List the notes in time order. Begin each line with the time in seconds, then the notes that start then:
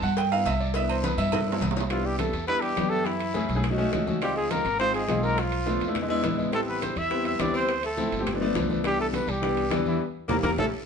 0.02 G2 F#5, high conga, short guiro
0.17 G5, cowbell, high conga, low agogo, long guiro
0.32 B3 D4 E4 F5, high conga, low agogo
0.46 C2 E5, cowbell, high conga, low timbale, low agogo, short guiro
0.60 D5, high conga, short guiro
0.74 B3 D4 E4 E5, cowbell, high conga, low agogo, long guiro
0.89 C5, high conga, low agogo
1.04 B4, cowbell, high conga, low timbale, short guiro
1.17 G2 E5, high conga, low agogo, short guiro
1.32 cowbell, high bongo, high conga, low conga, high timbale, low agogo, long guiro
1.47 B3 D4 E4, high conga
1.52 low timbale
1.61 C2, cowbell, high conga, low timbale, low agogo, short guiro
1.71 low timbale
1.76 cowbell, low bongo, high conga, short guiro
1.81 low timbale
1.90 F3 G3 B3 D4 E4 F4, high bongo, high timbale, long guiro
2.04 G3 G4, high conga
2.18 A3 A4, high bongo, high conga, high timbale, short guiro
2.33 E2, high conga, high timbale, short guiro
2.46 G3 B3 D4 E4 B4, high bongo, high conga, long guiro
2.60 G3 G4, high conga, high timbale
2.76 F#2 G3 B3 D4 G4, high bongo, low bongo, high conga, high timbale, short guiro
2.89 A3 A4, short guiro
3.05 E3 E4, high bongo, high conga, high timbale, long guiro
3.20 high bongo, high conga, high timbale
3.34 A3 C#4 E4 G#4, high bongo, high conga, short guiro
3.49 B1, high bongo, high conga, high timbale, short guiro
3.55 A3 C#4 E4 G#4
3.63 high bongo, high conga, low conga, high timbale, long guiro
3.70 A3 C#4 D#4 F#4
3.78 A3 C#4 D#4 F#4, high conga
3.92 C#2 A3 C#4 D#4 F#4, high bongo, low bongo, high conga, high timbale, short guiro
4.06 A3 C#4 D#4 F#4, high bongo, high conga, short guiro
4.21 G3 G#3 C4 D#4 F4 G4, high bongo, high conga, high timbale, long guiro
4.35 G#3 G#4, high conga
4.50 A#3 A#4, high bongo, high conga, high timbale, short guiro
4.64 G#1, high conga, high timbale, short guiro
4.79 G#3 C4 D#4 F4 C5, high bongo, long guiro
4.92 G#3 G#4, high conga, high timbale
5.08 B1 G#3 C4 D#4 F4, high bongo, low bongo, high conga, high timbale, low timbale, short guiro
5.22 A#3 A#4, short guiro
5.37 F3 F4, high bongo, high timbale, long guiro
5.52 high bongo, high conga, high timbale
5.66 A3 B3 D4 F4, high bongo, high conga, short guiro
5.80 E2, high bongo, high conga, high timbale, short guiro
5.88 A3 B3 D4 E4
5.95 high bongo, high conga, low conga, high timbale, long guiro
6.02 G#3 B3 D4 E4
6.08 G#3 B3 D4 E4, high conga
6.22 A1 G#3 B3 D4 E4, high bongo, low bongo, high conga, high timbale, short guiro
6.37 G#3 B3 D4 E4, high bongo, high conga, short guiro
6.52 G3 A3 B3 C4 E4 A4, high bongo, high conga, high timbale, long guiro
6.66 B3 B4, high conga
6.81 C4 C5, high bongo, high conga, high timbale, short guiro
6.96 E2 E4 E5, high conga, high timbale, short guiro
7.10 G3 B3 C4 E4, high bongo, high conga, long guiro
7.25 E4 E5, high conga, high timbale
7.39 D2 G3 B3 C4 D4 E4 D5, high bongo, low bongo, high conga, high timbale, short guiro
7.54 C4 C5, short guiro
7.68 high bongo, high conga, high timbale, long guiro
7.83 A3 A4, high bongo, high conga, high timbale
7.97 F3 A3 C4 E4, high bongo, high conga, short guiro
8.12 G1, high bongo, high conga, high timbale, short guiro
8.19 F3 A3 C4 G4
8.27 high bongo, high conga, low conga, high timbale, long guiro
8.33 F3 A3 B3 D4
8.41 F3 A3 B3 D4, high conga
8.54 C2 F3 A3 B3 D4, high bongo, low bongo, high conga, high timbale, short guiro
8.69 F3 A3 B3 D4, high bongo, high conga, short guiro
8.84 E3 G3 B3 D4 G4, high bongo, high conga, high timbale, long guiro
8.99 A3 A4, high conga
9.13 B3 B4, high bongo, high conga, high timbale, short guiro
9.27 C2 G3 G4, high conga, high timbale, short guiro
9.42 E3 G3 B3 D4, high bongo, high conga, long guiro
9.57 high conga, high timbale
9.70 E2 E3 G3 B3 D4, high bongo, low bongo, high conga, high timbale, short guiro
9.85 E3 E4, high conga, short guiro
10.28 E2 E3 G3 A#3 A#4, low bongo, low conga, high timbale, long guiro
10.43 E2 E3 G3 A#3 A#4, low bongo, low conga, high timbale, long guiro
10.57 A1 G3 A3 C#4 A4, low bongo, low conga, high timbale, long guiro